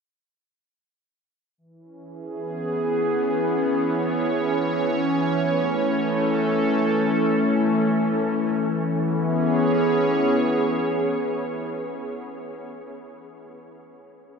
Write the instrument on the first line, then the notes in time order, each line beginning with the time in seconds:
ambient pad
1.58 E3
1.79 C#4
1.99 G#4
2.12 B3
3.18 C#5
5.29 A3
5.67 A4
8.62 E3
8.73 B3
8.85 C#4
8.97 G#4
9.11 C#5